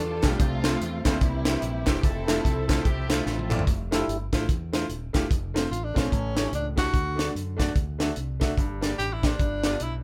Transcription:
Already playing: F3 B3 D4 F4 G4 A4
0.00 E2
0.22 B1 G3 A3 C4 D4 F4 G4, kick, snare, clap, closed hi-hat
0.39 C2 C3 F3 A3 C4 G4, kick, closed hi-hat
0.46 A4
0.63 A3 C4 F4 C5, snare, clap, closed hi-hat
0.81 E2, closed hi-hat
1.05 D2 G3 A3 A#3 C4 E4 F4 C5, kick, snare, clap, closed hi-hat
1.21 C2 C3 E3 A#3 C4 G4, kick, closed hi-hat
1.44 A#3 E4 G4 C5, snare, clap, closed hi-hat
1.62 A#1, closed hi-hat
1.86 E1 A#3 E4 G4 C5, kick, snare, clap, closed hi-hat
2.03 F1 F3 C4 E4 A4 E5, kick, closed hi-hat
2.27 A3 E4 F4 C5, snare, clap, closed hi-hat
2.45 C2, kick, closed hi-hat
2.68 A3 E4 F4 A4 C5, kick, snare, clap, closed hi-hat
2.85 C2 C4 E4 G4, kick, closed hi-hat
3.09 A3 C4 E4 F4 C5, snare, clap, closed hi-hat
3.26 A1, snare
3.39 high tom
3.50 A3 E4 F4 D5, clap, mid tom
3.59 floor tom
3.67 F1, kick, closed hi-hat
3.91 G3 A3 E4 F4 C5, snare, closed hi-hat
4.08 G1, closed hi-hat
4.33 A1 A3 E4 F4 C5, kick, snare, closed hi-hat
4.49 E2, kick, closed hi-hat
4.73 A3 E4 F4 C5, snare, closed hi-hat
4.89 D#1, closed hi-hat
5.13 E1 A3 E4 F4 G4, kick, snare, closed hi-hat
5.31 F1, kick, closed hi-hat
5.54 A3 C4 F4 C5, snare, closed hi-hat
5.71 A1 F4, closed hi-hat
5.84 D4
5.94 A#1 A3 C4 F4 C5, kick, snare, closed hi-hat
5.99 C#4
6.10 A1 A2, kick, closed hi-hat
6.35 A3 E4 G4 C#5, snare, closed hi-hat
6.52 C#2 D4, closed hi-hat
6.76 A3 E4 F#4 G4 A4, kick, snare, closed hi-hat
6.92 D2 D3, kick, closed hi-hat
7.16 A3 D4 F#4 D5, snare
7.20 closed hi-hat
7.35 F#2, closed hi-hat
7.57 A3 D4 F#4 D5, kick, snare, closed hi-hat
7.75 D2, kick, closed hi-hat
7.99 A3 D4 F#4 E5, snare, closed hi-hat
8.16 C2, closed hi-hat
8.40 A3 D4 F#4 E5, kick, snare, closed hi-hat
8.57 G1 G2, kick, closed hi-hat
8.81 A#3 D4 G4 D5, snare, closed hi-hat
8.99 A1 G4, closed hi-hat
9.13 E4
9.23 A#3 D4 G4 C5, kick, snare, closed hi-hat
9.39 G1 G2, kick, closed hi-hat
9.63 B3 F4 G4 D5, snare, closed hi-hat
9.80 B1 E4, closed hi-hat

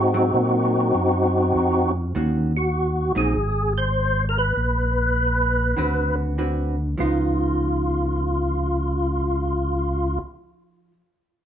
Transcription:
Already playing: G#2 C4 D#4 F#4
0.14 F#3 C4
0.34 A#2
0.95 F#2
1.55 F2
2.15 D#2 D#3 A#3 C#4 F#4
2.57 F#4
3.15 A#1 F#3 C4 D#4 G#4
3.35 G#1
3.78 C5
4.29 A#4
4.38 B4
4.57 A#1
5.77 D2 D3 C4 F#4 B4
6.38 D3 C4 F#4 B4
6.98 C#2 F3 B3 D#4 F4

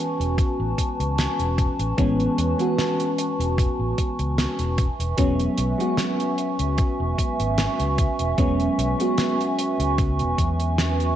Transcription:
Already playing: E3 G#3 B3 C#4 F#4 B4 G#5 A5 C#6
0.20 E1, closed hi-hat
0.38 muted fingered electric bass stroke, kick, closed hi-hat
0.60 A1
0.78 kick, closed hi-hat
1.00 C#2, closed hi-hat
1.18 snare, closed hi-hat
1.39 E1, closed hi-hat
1.58 kick, closed hi-hat
1.79 A1, closed hi-hat
1.97 A1 E3 G#3 B3 C#4, kick, closed hi-hat
2.20 closed hi-hat
2.38 E2, closed hi-hat
2.58 E3 G#3 B3 F#4, closed hi-hat
2.78 snare, closed hi-hat
3.00 closed hi-hat
3.18 closed hi-hat
3.39 E1, closed hi-hat
3.58 kick, closed hi-hat
3.79 A1
3.98 kick, closed hi-hat
4.19 C#2, closed hi-hat
4.38 snare, closed hi-hat
4.59 E1, closed hi-hat
4.78 B4 E5, kick, closed hi-hat
4.99 E1, closed hi-hat
5.17 E1 F#3 G#3 B3 C#4, kick, closed hi-hat
5.39 closed hi-hat
5.58 B1, closed hi-hat
5.78 F#3 G#3 B3 F#4, closed hi-hat
5.97 snare, closed hi-hat
6.20 closed hi-hat
6.38 closed hi-hat
6.59 C#2, closed hi-hat
6.78 muted fingered electric bass stroke, kick, closed hi-hat
7.00 E1
7.18 kick, closed hi-hat
7.40 G#1, closed hi-hat
7.58 snare, closed hi-hat
7.80 C#2, closed hi-hat
7.98 kick, closed hi-hat
8.19 E1, closed hi-hat
8.38 E1 F#3 G#3 B3 C#4, kick, closed hi-hat
8.60 closed hi-hat
8.78 B1, closed hi-hat
8.98 F#3 G#3 B3 F#4, closed hi-hat
9.18 snare, closed hi-hat
9.41 closed hi-hat
9.59 closed hi-hat
9.79 C#2, closed hi-hat
9.98 kick, closed hi-hat
10.19 E1, closed hi-hat
10.38 E2, kick, closed hi-hat
10.60 closed hi-hat
10.78 snare, closed hi-hat
11.00 closed hi-hat

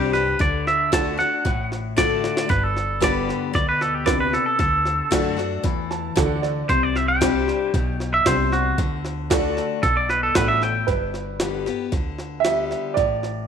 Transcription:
Already playing: C2 G2 G3 C4 D4 G4 C5
0.13 D4 G4 B4, snare
0.39 D2 D3 D5, kick, snare
0.67 E5, snare
0.92 D3 A3 D4 F#4 A4 A5, kick, snare, hi-hat pedal
1.17 D4 F#4 F#5, snare
1.45 A1 A2, kick, snare
1.72 snare
1.97 D3 A3 D4 F#4 A4 D5, kick, snare, hi-hat pedal
2.24 snare
2.37 snare
2.49 G1 G2 B4, kick, snare
2.64 A4
2.77 snare
3.00 D3 G3 B3 D4 G4 B4 D5, kick, snare, hi-hat pedal
3.29 snare
3.53 D2 B2 D5, kick, snare
3.69 B4
3.81 A4, snare
3.95 G4
4.05 C3 D4 G4 B4 D5, kick, snare, hi-hat pedal
4.20 B4
4.33 A4, snare
4.46 A4
4.59 D2 D3 A4, kick, snare
4.86 snare
5.11 F#2 D3 A3 D4 F#4 A4, kick, snare, hi-hat pedal
5.36 D4 F#4, snare
5.63 E2 E3, kick, snare
5.91 A5, snare
6.16 D2 D3 D4 F#4 A4 F#5, kick, snare, hi-hat pedal
6.42 D5, snare
6.69 C2 C3 C5, kick, snare
6.83 D5
6.96 E5, snare
7.08 G5
7.21 G3 C4 D4 G4 C5, kick, snare, hi-hat pedal
7.48 snare
7.74 B1 B2, kick, snare
8.00 snare
8.14 E5
8.26 C2 C3 D4 G4 C5, kick, snare, hi-hat pedal
8.52 F#4, snare
8.78 D2 D3, kick, snare
9.05 snare
9.30 D3 A3 D4 F#4 A4, kick, snare, hi-hat pedal
9.57 snare
9.83 B1 B2 A4, kick, snare
9.97 D5
10.09 B4, snare
10.23 A4
10.35 A1 A2 D4 F#4 A4 B4, kick, snare, hi-hat pedal
10.48 E5
10.62 G5, snare
10.87 G1 G2 B4, kick, snare
11.14 snare
11.40 D3 G3 B3 G4, snare, hi-hat pedal
11.66 B3 G4, snare
11.92 D2 D3, kick, snare
12.19 snare
12.40 E5
12.44 D3 G3 B3 G4, snare, hi-hat pedal
12.71 snare
12.94 A1 A2 D5, kick, snare
13.23 snare

